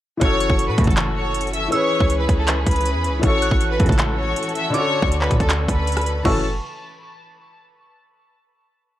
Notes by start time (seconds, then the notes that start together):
0.17 E3 C#4, kick, closed hi-hat
0.21 F#1 E3 C#4 F#4 A4 C#5 C#6
0.40 C#6, closed hi-hat
0.50 F#1, kick
0.59 closed hi-hat
0.68 A2 B4 B5
0.78 C#2 F#2 A2 E3, kick, closed hi-hat
0.84 F#1 A4, kick, closed hi-hat
0.88 A5, closed hi-hat
0.97 clap, closed hi-hat
1.16 C#5 C#6
1.34 closed hi-hat
1.41 closed hi-hat
1.47 closed hi-hat
1.53 E5 E6, closed hi-hat
1.68 E3 C#4 G#4 B4 E6, closed hi-hat
1.72 G#4 B4 C#5 C#6
2.00 C#2, kick
2.10 closed hi-hat
2.19 B4 B5
2.29 C#2, kick, closed hi-hat
2.38 A4 A5
2.48 clap, closed hi-hat
2.67 C#2 B4 B5, kick, closed hi-hat
2.71 closed hi-hat
2.76 closed hi-hat
2.81 closed hi-hat
2.86 closed hi-hat
2.95 E2
3.04 closed hi-hat
3.09 C#2
3.19 A1 E3 C#4 F#4 A4 C#5, kick, closed hi-hat
3.24 F#4 A4 C#6
3.42 F#6, closed hi-hat
3.51 A1, kick
3.61 closed hi-hat
3.70 B4 B5
3.80 C#2 E2 A2 E3, kick, closed hi-hat
3.86 A1 A4, kick, closed hi-hat
3.90 A5, closed hi-hat
3.99 clap, closed hi-hat
4.17 C#5 C#6
4.36 closed hi-hat
4.43 closed hi-hat
4.49 closed hi-hat
4.55 E5 E6, closed hi-hat
4.70 D3 C#4
4.74 D3 C#4 F#4 A4 C#5 C#6 D6, closed hi-hat
5.02 D2, kick
5.12 closed hi-hat
5.21 B4 B5, clap
5.31 A2, kick, closed hi-hat
5.40 D2 A4 A5, kick, closed hi-hat
5.50 clap, closed hi-hat
5.68 D2 B4 B5, kick, closed hi-hat
5.87 closed hi-hat
5.92 closed hi-hat
5.97 cross-stick, closed hi-hat
6.01 closed hi-hat
6.06 closed hi-hat
6.25 F#1 C#2 A2 E3 C#4 F#4 A4 A5 C#6, kick, crash